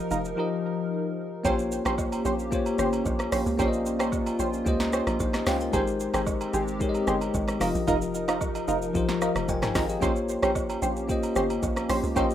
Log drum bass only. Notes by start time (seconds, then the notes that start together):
0.11 F1
1.45 A#1
1.86 A#1
2.25 A#1
2.79 G1
3.06 A#1
3.32 A#1
3.46 C#2
3.59 A#1
4.39 A#1
4.66 C#2
5.07 A#1
5.20 A#1
5.47 C#2
5.73 G#1
6.14 G#1
6.54 G#1
7.07 G1
7.34 G#1
7.61 F1
7.75 A#1
7.88 F1
8.68 F1
8.95 A#1
9.36 F1
9.48 F1
9.75 G#1
10.02 A#1
10.43 A#1
10.82 A#1
11.36 G1
11.63 A#1
11.90 A#1
12.03 C#2
12.16 A#1